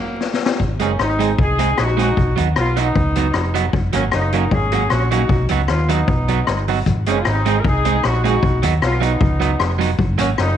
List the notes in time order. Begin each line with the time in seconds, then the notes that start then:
Already playing: F#3 A#3
0.21 snare
0.34 snare
0.46 snare
0.60 G#1, kick
0.79 F#1 G#3 A#3 C4 C#4 D#4 G#4, closed hi-hat
0.99 G#1 C4 D#4, cross-stick
1.19 G#3 C4 D#4 G#4, closed hi-hat
1.38 C2 D#4 G#4, kick
1.59 G#3 C4 D#4 G#4, closed hi-hat
1.78 A#1 D#4 F#4, cross-stick
1.97 G#3 C4 D#4 F#4 G#4, closed hi-hat
2.17 B1, kick
2.36 D#2 F#3 B3 D#4 F#4, closed hi-hat
2.56 B1 B3 F4, cross-stick
2.76 F#3 B3 D#4 F#4, closed hi-hat
2.95 C#2, kick
3.15 F#3 B3 D#4 F#4, closed hi-hat
3.34 F1, cross-stick
3.54 F#3 B3 D#4 F#4, closed hi-hat
3.73 F#1, kick
3.93 G#1 F#3 A#3 C#4 F#4, closed hi-hat
4.12 F#1 A#3 D#4, cross-stick
4.32 F#3 A#3 C#4 F#4, closed hi-hat
4.51 G#1 C#4 G#4, kick
4.72 F#3 A#3 C#4 F#4, closed hi-hat
4.90 A#1 C#4 F#4, cross-stick
5.11 F#3 A#3 C#4 D#4 F#4, closed hi-hat
5.29 B1, kick
5.49 C#2 F#3 B3 D#4 F#4, closed hi-hat
5.68 D#2 B3 F4, cross-stick
5.89 F#3 B3 D#4 F#4, closed hi-hat
6.08 B1, kick
6.28 F#3 B3 D#4 F#4, closed hi-hat
6.47 G1, cross-stick
6.68 F#3 B3 D#4 F#4, open hi-hat
6.86 G#1, kick, hi-hat pedal
7.06 F#1 G#3 A#3 C4 C#4 D#4 G#4, closed hi-hat
7.20 F4
7.25 G#1 C4 D#4, cross-stick
7.46 G#3 C4 D#4 G#4, closed hi-hat
7.60 A#4
7.65 C2 D#4 G#4, kick
7.85 G#3 C4 D#4 G#4, closed hi-hat
8.03 A#1 D#4 F#4, cross-stick
8.24 G#3 C4 D#4 F#4 G#4, closed hi-hat
8.43 B1, kick
8.63 D#2 F#3 B3 D#4 F#4, closed hi-hat
8.82 B1 B3 F4, cross-stick
9.01 F#3 B3 D#4 F#4, closed hi-hat
9.05 B3 D#4
9.21 C#2, kick
9.40 F#3 B3 D#4 F#4, closed hi-hat
9.60 F1, cross-stick
9.79 F#3 B3 D#4 F#4, closed hi-hat
9.99 F#1, kick
10.18 G#1 F#3 A#3 C#4 F#4, closed hi-hat
10.38 F#1 A#3 D#4, cross-stick